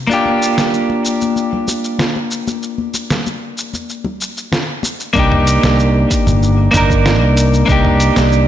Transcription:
0.07 A#3 D4, muted conga, shaker
0.12 F4 G4
0.26 high conga
0.42 shaker
0.58 snare, muted conga, low conga, shaker
0.74 shaker
0.90 muted conga
1.05 shaker
1.21 high conga, shaker
1.36 muted conga, shaker
1.53 low conga
1.68 muted conga, shaker
1.84 shaker
1.99 snare, high conga, shaker
2.16 muted conga
2.31 shaker
2.48 muted conga, shaker
2.63 shaker
2.78 high conga
2.94 muted conga, shaker
3.10 snare, low conga, shaker
3.26 muted conga, shaker
3.58 shaker
3.74 muted conga, high conga, shaker
3.90 shaker
4.04 muted conga, low conga
4.21 shaker
4.37 shaker
4.52 snare, muted conga, high conga, shaker
4.83 muted conga, shaker
5.00 shaker
5.13 C2 A#3 D4, kick, shaker
5.18 D#4 G4
5.32 mid tom
5.47 closed hi-hat, shaker
5.63 C2, snare, shaker
5.79 shaker
6.11 kick, closed hi-hat, shaker
6.27 G1, mid tom, shaker
6.43 shaker
6.71 G1 A#3 D4 D#4, kick, closed hi-hat, mid tom, shaker
6.77 A#4
6.90 kick, shaker
7.06 snare, shaker
7.22 C2
7.37 closed hi-hat, shaker
7.54 shaker
7.66 C2 A#3 D4 D#4, kick, shaker
7.72 G4
7.85 mid tom
8.00 closed hi-hat, shaker
8.16 C2, snare, shaker
8.32 shaker

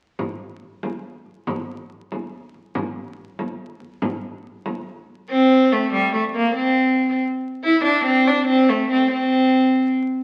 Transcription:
0.19 frame drum
0.62 frame drum
0.83 frame drum
1.25 frame drum
1.47 frame drum
1.90 frame drum
2.12 frame drum
2.55 frame drum
2.75 frame drum
3.18 frame drum
3.39 frame drum
3.81 frame drum
4.02 frame drum
4.66 frame drum
4.87 frame drum
5.31 C4
5.72 A3
5.93 G3
6.14 A3
6.35 A#3
6.55 C4
7.64 E4
7.84 D4
8.05 C4
8.27 D4
8.48 C4
8.69 A3
8.92 C4
9.12 C4

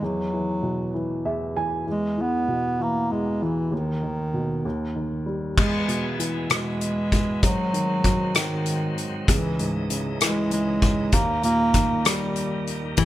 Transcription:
0.02 E2 F#3
0.33 E3
0.63 B2
0.94 E3
1.25 E2 E5
1.56 E3 G#5
1.87 E2 G#3
2.17 E3 B3
2.48 B2
2.79 E3 A#3
3.11 E2 G#3
3.41 E3
3.72 D#2 D#3
4.03 D#3
4.34 B2
4.65 D#2
4.96 D#3
5.26 G3
5.58 E2 E3 G#3 B3, kick, crash
5.88 B2, closed hi-hat
6.19 E3, closed hi-hat
6.50 B2 G#3, cross-stick, closed hi-hat
6.81 closed hi-hat
7.12 kick, closed hi-hat
7.42 G#2 D#3 F#3 C4, kick, closed hi-hat
7.73 D#3, closed hi-hat
8.04 F#3, kick, cross-stick, closed hi-hat
8.35 D#3, cross-stick, closed hi-hat
8.66 closed hi-hat
8.98 closed hi-hat
9.28 C#2 C#3 E3 D#4, kick, closed hi-hat
9.59 G#2, closed hi-hat
9.90 C#3, closed hi-hat
10.21 E3 G#3, cross-stick, closed hi-hat
10.51 G#3, closed hi-hat
10.82 kick, closed hi-hat
11.12 D#2 D#3 G3 A#3, kick, closed hi-hat
11.43 A#2 A#3, closed hi-hat
11.74 D#3, kick, cross-stick, closed hi-hat
12.05 G3, cross-stick, closed hi-hat
12.36 closed hi-hat
12.67 closed hi-hat
12.97 E2 E3 G#3 B3, kick, closed hi-hat

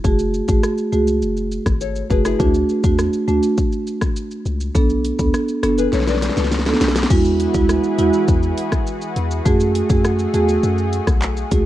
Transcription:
0.04 F#1 A3 F#4 G#4, kick, shaker
0.19 shaker
0.34 shaker
0.48 A1 A3 F#4 G#4, kick, shaker
0.63 cross-stick, shaker
0.78 shaker
0.92 C#2 A3 F#4 G#4, shaker
1.07 shaker
1.22 F#1, shaker
1.37 shaker
1.52 shaker
1.66 G#1, kick, cross-stick, shaker
1.81 A4 C#5, shaker
1.96 shaker
2.10 F#1 A3 F#4 G#4 B4, kick, shaker
2.25 E4 G#4, cross-stick, shaker
2.39 D2 A3 D4 F#4, kick, shaker
2.54 shaker
2.69 shaker
2.84 E2 A3 D4 F#4, kick, shaker
2.99 cross-stick, shaker
3.13 shaker
3.28 D2 A3 D4 F#4, shaker
3.43 shaker
3.58 kick, shaker
3.72 shaker
3.87 shaker
4.01 kick, cross-stick, shaker
4.16 shaker
4.31 shaker
4.46 C#2, shaker
4.61 shaker
4.75 B1 B3 D4 A4, kick, shaker
4.90 shaker
5.05 closed hi-hat, shaker
5.19 D2 B3 D4 A4, kick, shaker
5.34 cross-stick, shaker
5.49 shaker
5.63 F#1 B3 D4 F#4 A4, cross-stick, closed hi-hat, shaker
5.78 G#4 B4, shaker
5.93 B1 A4 C#5, snare, shaker
6.00 snare
6.07 B4 D5, snare, shaker
6.15 snare
6.22 G#4 B4, snare, closed hi-hat, shaker
6.29 snare
6.37 C#2 F#4 A4, snare, shaker
6.44 snare
6.52 snare, shaker
6.59 snare
6.66 B3 D4 A4, snare, shaker
6.74 snare
6.81 B1, snare, closed hi-hat, shaker
6.88 snare
6.96 snare, shaker
7.03 snare
7.10 E2 E3 G#3 E4 F#4 G#4 B4, kick, crash, shaker
7.25 shaker
7.40 closed hi-hat, shaker
7.54 D2 G#3 E4 F#4, kick, shaker
7.69 cross-stick, shaker
7.84 shaker
7.98 E2 G#3 E4 F#4, closed hi-hat, shaker
8.13 shaker
8.28 E2, kick, shaker
8.43 shaker
8.58 closed hi-hat, shaker
8.72 kick, cross-stick, shaker
8.87 shaker
9.02 shaker
9.16 E2, closed hi-hat, shaker
9.31 shaker
9.45 F#2 A3 F#4 G#4, kick, shaker
9.60 shaker
9.75 closed hi-hat, shaker
9.90 F#2 A3 F#4 G#4, kick, shaker
10.05 cross-stick, shaker
10.19 shaker
10.34 E2 A3 F#4 G#4, closed hi-hat, shaker
10.49 shaker
10.63 F#2, shaker
10.78 shaker
10.93 closed hi-hat, shaker
11.07 B1, kick, cross-stick, shaker
11.22 clap, shaker
11.37 shaker
11.51 C#2 A3 F#4 G#4, kick, closed hi-hat, shaker

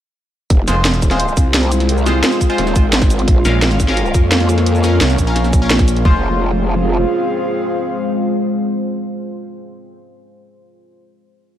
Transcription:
0.50 F1 G#3 C4 F4 C5, kick, closed hi-hat
0.63 F4
0.68 F1 G#3 F4 C5, snare, closed hi-hat, shaker
0.85 snare, closed hi-hat
0.92 G#4, closed hi-hat, shaker
1.02 D#1, kick, closed hi-hat, shaker
1.11 G#3 F4 C5 F5, snare, closed hi-hat
1.20 closed hi-hat
1.28 shaker
1.37 C2, kick, closed hi-hat, shaker
1.54 snare, closed hi-hat
1.63 closed hi-hat
1.72 closed hi-hat, shaker
1.80 snare, closed hi-hat
1.89 closed hi-hat
1.98 shaker
2.06 G#3 F4 C5, snare, closed hi-hat, shaker
2.24 snare, closed hi-hat
2.32 closed hi-hat, shaker
2.41 kick, closed hi-hat, shaker
2.50 G#3 F4 C5, closed hi-hat
2.58 D#1, snare, closed hi-hat
2.67 snare, shaker
2.76 G#1, kick, closed hi-hat, shaker
2.93 snare, closed hi-hat
3.02 kick, snare, closed hi-hat, shaker
3.10 closed hi-hat, shaker
3.19 closed hi-hat
3.28 A#1 A#3 C#4 C#5, kick, closed hi-hat
3.45 A#1 C#4 A#4 F5, snare, closed hi-hat, shaker
3.62 snare, closed hi-hat
3.71 closed hi-hat, shaker
3.80 G#1, kick, closed hi-hat, shaker
3.88 C#4 A#4 F5, snare, closed hi-hat
3.97 closed hi-hat
4.06 shaker
4.14 F2, kick, closed hi-hat, shaker
4.32 snare, closed hi-hat
4.40 closed hi-hat
4.49 closed hi-hat, shaker
4.58 snare, closed hi-hat
4.66 closed hi-hat
4.75 shaker
4.84 C#4 A#4 F5, snare, closed hi-hat, shaker
5.01 C2, snare, closed hi-hat
5.10 closed hi-hat, shaker
5.18 A#1, kick, closed hi-hat, shaker
5.27 C#4 A#4 F5, closed hi-hat
5.36 snare, closed hi-hat
5.44 snare, shaker
5.53 kick, closed hi-hat, shaker
5.62 C#4 A#4 F5
5.70 snare, closed hi-hat
5.79 kick, snare, closed hi-hat, shaker
5.88 closed hi-hat, shaker
5.97 closed hi-hat
6.05 F1 G#3 C4 F4 C5, kick, floor tom
6.10 F4
6.16 G#4
6.21 F5

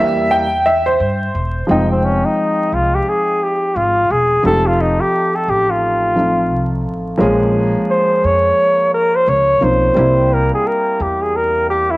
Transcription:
Already playing: E2 E3 G3 A#3 E5
0.31 G5
0.66 E5
0.86 C5
1.00 G2
1.35 E1
1.67 F1 F3 G#3 C4 D#4 G5
1.91 C4
2.05 C#4
2.25 D#4
2.72 C2 F4
2.95 G4
3.08 G#4
3.43 G4
3.76 G#1 F4
4.10 E1 G#4
4.43 F1 F3 G#3 C4 D#4 G4 A4
4.50 A3
4.67 F4
4.81 D#4
5.01 G4
5.36 A4
5.48 A1 G4
5.70 F4
6.15 F3 A3 C4 D#4 F4
6.52 C2
6.86 A1
7.18 A#1 F3 G#3 A#3 C#4
7.22 G#4
7.90 C5
8.24 F2 C#5
8.94 A#4
9.15 C5
9.28 C#2 C#5
9.61 B1 F3 A#3 C4 C#4 D#4 C5
9.95 C2 G3 A#3 C4 E4 G4
10.33 A#4
10.54 G#4
10.67 A#4
11.00 E2 G4
11.22 G#4
11.36 A#4
11.70 G4
11.91 E4

